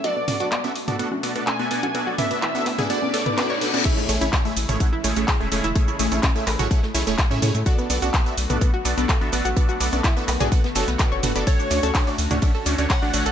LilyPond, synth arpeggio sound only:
\new Staff \with { instrumentName = "Synth arpeggio sound" } { \time 4/4 \key a \major \tempo 4 = 126 fis'16 b16 b16 fis'16 b16 b16 r16 b16 b16 fis'16 b16 b16 a'16 b16 b16 fis'16 | b16 fis'16 b16 b16 e'16 b16 b16 gis'16 b16 b16 a'16 b16 b16 cis''16 b16 b16 | e'16 a16 a16 e'16 a16 a16 r16 a16 a16 e'16 a16 a16 gis'16 a16 a16 e'16 | a16 e'16 a16 a16 cis'16 a16 a16 fis'16 a16 a16 e'16 a16 a16 cis'16 a16 a16 |
fis'16 b16 b16 fis'16 b16 b16 r16 b16 b16 fis'16 b16 b16 a'16 b16 b16 fis'16 | b16 fis'16 b16 b16 e'16 b16 b16 gis'16 b16 b16 a'16 b16 b16 cis''16 b16 b16 | a'16 d'16 d'16 a'16 d'16 d'16 r16 d'16 d'16 a'16 d'16 d'16 cis''16 d'16 d'16 a'16 | }